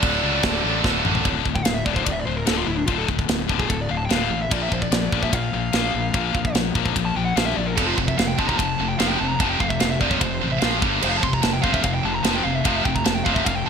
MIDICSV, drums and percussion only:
0, 0, Header, 1, 2, 480
1, 0, Start_track
1, 0, Key_signature, -1, "minor"
1, 0, Tempo, 407056
1, 1478, Time_signature, 4, 2, 24, 8
1, 16149, End_track
2, 0, Start_track
2, 0, Title_t, "Drums"
2, 29, Note_on_c, 9, 49, 60
2, 33, Note_on_c, 9, 36, 88
2, 147, Note_off_c, 9, 49, 0
2, 151, Note_off_c, 9, 36, 0
2, 507, Note_on_c, 9, 49, 61
2, 513, Note_on_c, 9, 36, 115
2, 516, Note_on_c, 9, 38, 116
2, 625, Note_off_c, 9, 49, 0
2, 631, Note_off_c, 9, 36, 0
2, 633, Note_off_c, 9, 38, 0
2, 995, Note_on_c, 9, 36, 92
2, 1000, Note_on_c, 9, 38, 67
2, 1112, Note_off_c, 9, 36, 0
2, 1118, Note_off_c, 9, 38, 0
2, 1238, Note_on_c, 9, 45, 97
2, 1355, Note_off_c, 9, 45, 0
2, 1356, Note_on_c, 9, 43, 90
2, 1474, Note_off_c, 9, 43, 0
2, 1475, Note_on_c, 9, 53, 62
2, 1476, Note_on_c, 9, 36, 93
2, 1593, Note_off_c, 9, 53, 0
2, 1594, Note_off_c, 9, 36, 0
2, 1716, Note_on_c, 9, 36, 80
2, 1834, Note_off_c, 9, 36, 0
2, 1834, Note_on_c, 9, 36, 76
2, 1947, Note_on_c, 9, 53, 79
2, 1952, Note_off_c, 9, 36, 0
2, 1955, Note_on_c, 9, 38, 108
2, 2065, Note_off_c, 9, 53, 0
2, 2073, Note_off_c, 9, 38, 0
2, 2192, Note_on_c, 9, 36, 87
2, 2310, Note_off_c, 9, 36, 0
2, 2313, Note_on_c, 9, 36, 82
2, 2431, Note_off_c, 9, 36, 0
2, 2434, Note_on_c, 9, 36, 95
2, 2434, Note_on_c, 9, 53, 77
2, 2552, Note_off_c, 9, 36, 0
2, 2552, Note_off_c, 9, 53, 0
2, 2910, Note_on_c, 9, 53, 71
2, 2919, Note_on_c, 9, 38, 101
2, 3028, Note_off_c, 9, 53, 0
2, 3037, Note_off_c, 9, 38, 0
2, 3391, Note_on_c, 9, 53, 69
2, 3396, Note_on_c, 9, 36, 88
2, 3509, Note_off_c, 9, 53, 0
2, 3514, Note_off_c, 9, 36, 0
2, 3638, Note_on_c, 9, 36, 81
2, 3756, Note_off_c, 9, 36, 0
2, 3759, Note_on_c, 9, 36, 81
2, 3877, Note_off_c, 9, 36, 0
2, 3877, Note_on_c, 9, 53, 68
2, 3886, Note_on_c, 9, 38, 112
2, 3995, Note_off_c, 9, 53, 0
2, 4004, Note_off_c, 9, 38, 0
2, 4120, Note_on_c, 9, 36, 87
2, 4238, Note_off_c, 9, 36, 0
2, 4239, Note_on_c, 9, 36, 77
2, 4357, Note_off_c, 9, 36, 0
2, 4361, Note_on_c, 9, 36, 104
2, 4363, Note_on_c, 9, 53, 65
2, 4479, Note_off_c, 9, 36, 0
2, 4481, Note_off_c, 9, 53, 0
2, 4839, Note_on_c, 9, 53, 64
2, 4848, Note_on_c, 9, 38, 100
2, 4957, Note_off_c, 9, 53, 0
2, 4965, Note_off_c, 9, 38, 0
2, 5323, Note_on_c, 9, 36, 106
2, 5325, Note_on_c, 9, 57, 82
2, 5441, Note_off_c, 9, 36, 0
2, 5442, Note_off_c, 9, 57, 0
2, 5564, Note_on_c, 9, 36, 79
2, 5681, Note_off_c, 9, 36, 0
2, 5683, Note_on_c, 9, 36, 82
2, 5801, Note_off_c, 9, 36, 0
2, 5802, Note_on_c, 9, 53, 74
2, 5810, Note_on_c, 9, 38, 121
2, 5920, Note_off_c, 9, 53, 0
2, 5928, Note_off_c, 9, 38, 0
2, 6043, Note_on_c, 9, 36, 83
2, 6161, Note_off_c, 9, 36, 0
2, 6163, Note_on_c, 9, 36, 82
2, 6281, Note_off_c, 9, 36, 0
2, 6284, Note_on_c, 9, 36, 95
2, 6285, Note_on_c, 9, 53, 76
2, 6402, Note_off_c, 9, 36, 0
2, 6403, Note_off_c, 9, 53, 0
2, 6759, Note_on_c, 9, 53, 67
2, 6767, Note_on_c, 9, 38, 98
2, 6877, Note_off_c, 9, 53, 0
2, 6885, Note_off_c, 9, 38, 0
2, 7241, Note_on_c, 9, 53, 64
2, 7242, Note_on_c, 9, 36, 102
2, 7359, Note_off_c, 9, 53, 0
2, 7360, Note_off_c, 9, 36, 0
2, 7484, Note_on_c, 9, 36, 82
2, 7601, Note_off_c, 9, 36, 0
2, 7603, Note_on_c, 9, 36, 85
2, 7721, Note_off_c, 9, 36, 0
2, 7722, Note_on_c, 9, 53, 70
2, 7730, Note_on_c, 9, 38, 116
2, 7840, Note_off_c, 9, 53, 0
2, 7848, Note_off_c, 9, 38, 0
2, 7963, Note_on_c, 9, 36, 81
2, 8081, Note_off_c, 9, 36, 0
2, 8084, Note_on_c, 9, 36, 79
2, 8202, Note_off_c, 9, 36, 0
2, 8206, Note_on_c, 9, 36, 103
2, 8210, Note_on_c, 9, 53, 69
2, 8324, Note_off_c, 9, 36, 0
2, 8328, Note_off_c, 9, 53, 0
2, 8692, Note_on_c, 9, 53, 65
2, 8700, Note_on_c, 9, 38, 108
2, 8810, Note_off_c, 9, 53, 0
2, 8818, Note_off_c, 9, 38, 0
2, 9169, Note_on_c, 9, 36, 92
2, 9171, Note_on_c, 9, 57, 83
2, 9287, Note_off_c, 9, 36, 0
2, 9289, Note_off_c, 9, 57, 0
2, 9408, Note_on_c, 9, 36, 79
2, 9526, Note_off_c, 9, 36, 0
2, 9529, Note_on_c, 9, 36, 80
2, 9647, Note_off_c, 9, 36, 0
2, 9655, Note_on_c, 9, 53, 69
2, 9663, Note_on_c, 9, 38, 109
2, 9773, Note_off_c, 9, 53, 0
2, 9781, Note_off_c, 9, 38, 0
2, 9889, Note_on_c, 9, 36, 87
2, 10007, Note_off_c, 9, 36, 0
2, 10010, Note_on_c, 9, 36, 84
2, 10128, Note_off_c, 9, 36, 0
2, 10130, Note_on_c, 9, 36, 95
2, 10136, Note_on_c, 9, 53, 72
2, 10248, Note_off_c, 9, 36, 0
2, 10254, Note_off_c, 9, 53, 0
2, 10610, Note_on_c, 9, 53, 78
2, 10618, Note_on_c, 9, 38, 109
2, 10728, Note_off_c, 9, 53, 0
2, 10736, Note_off_c, 9, 38, 0
2, 11084, Note_on_c, 9, 36, 92
2, 11084, Note_on_c, 9, 53, 61
2, 11202, Note_off_c, 9, 36, 0
2, 11202, Note_off_c, 9, 53, 0
2, 11324, Note_on_c, 9, 36, 81
2, 11442, Note_off_c, 9, 36, 0
2, 11443, Note_on_c, 9, 36, 76
2, 11559, Note_on_c, 9, 53, 76
2, 11561, Note_off_c, 9, 36, 0
2, 11568, Note_on_c, 9, 38, 118
2, 11677, Note_off_c, 9, 53, 0
2, 11686, Note_off_c, 9, 38, 0
2, 11801, Note_on_c, 9, 36, 83
2, 11919, Note_off_c, 9, 36, 0
2, 11920, Note_on_c, 9, 36, 78
2, 12038, Note_off_c, 9, 36, 0
2, 12041, Note_on_c, 9, 36, 102
2, 12041, Note_on_c, 9, 53, 80
2, 12158, Note_off_c, 9, 36, 0
2, 12159, Note_off_c, 9, 53, 0
2, 12519, Note_on_c, 9, 53, 61
2, 12527, Note_on_c, 9, 38, 110
2, 12637, Note_off_c, 9, 53, 0
2, 12645, Note_off_c, 9, 38, 0
2, 12762, Note_on_c, 9, 36, 108
2, 12879, Note_off_c, 9, 36, 0
2, 13001, Note_on_c, 9, 57, 92
2, 13119, Note_off_c, 9, 57, 0
2, 13243, Note_on_c, 9, 36, 88
2, 13360, Note_off_c, 9, 36, 0
2, 13363, Note_on_c, 9, 36, 82
2, 13476, Note_on_c, 9, 53, 69
2, 13481, Note_off_c, 9, 36, 0
2, 13485, Note_on_c, 9, 38, 114
2, 13594, Note_off_c, 9, 53, 0
2, 13603, Note_off_c, 9, 38, 0
2, 13722, Note_on_c, 9, 36, 84
2, 13840, Note_off_c, 9, 36, 0
2, 13842, Note_on_c, 9, 36, 91
2, 13957, Note_on_c, 9, 53, 71
2, 13960, Note_off_c, 9, 36, 0
2, 13961, Note_on_c, 9, 36, 105
2, 14075, Note_off_c, 9, 53, 0
2, 14079, Note_off_c, 9, 36, 0
2, 14439, Note_on_c, 9, 53, 73
2, 14447, Note_on_c, 9, 38, 104
2, 14557, Note_off_c, 9, 53, 0
2, 14565, Note_off_c, 9, 38, 0
2, 14916, Note_on_c, 9, 53, 73
2, 14919, Note_on_c, 9, 36, 99
2, 15034, Note_off_c, 9, 53, 0
2, 15037, Note_off_c, 9, 36, 0
2, 15158, Note_on_c, 9, 36, 92
2, 15275, Note_off_c, 9, 36, 0
2, 15279, Note_on_c, 9, 36, 81
2, 15394, Note_on_c, 9, 53, 81
2, 15396, Note_off_c, 9, 36, 0
2, 15402, Note_on_c, 9, 38, 117
2, 15512, Note_off_c, 9, 53, 0
2, 15520, Note_off_c, 9, 38, 0
2, 15637, Note_on_c, 9, 36, 85
2, 15755, Note_off_c, 9, 36, 0
2, 15756, Note_on_c, 9, 36, 86
2, 15874, Note_off_c, 9, 36, 0
2, 15877, Note_on_c, 9, 36, 102
2, 15879, Note_on_c, 9, 53, 79
2, 15995, Note_off_c, 9, 36, 0
2, 15997, Note_off_c, 9, 53, 0
2, 16149, End_track
0, 0, End_of_file